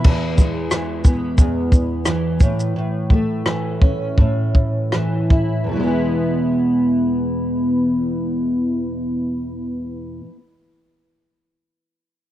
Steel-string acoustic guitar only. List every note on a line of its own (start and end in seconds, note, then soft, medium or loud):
0.00 0.12 B2 medium
0.00 0.71 E3 medium
0.00 0.37 B3 medium
0.00 1.04 E4 medium
0.05 1.37 E2 medium
0.38 2.48 G#3 soft
0.71 2.06 E3 medium
1.05 2.48 B3 medium
1.38 2.40 E2 medium
2.07 3.45 E3 medium
2.41 2.75 A2 medium
2.76 4.17 A2 medium
3.11 5.77 A3 medium
3.46 4.92 E3 medium
3.82 5.77 C#4 soft
4.18 5.69 A2 medium
4.93 5.73 E3 medium
5.30 5.84 E4 medium
5.64 10.19 E2 medium
5.69 10.24 B2 medium
5.69 10.28 E3 medium
5.77 10.32 G#3 medium
5.77 10.35 B3 medium
5.84 10.38 E4 medium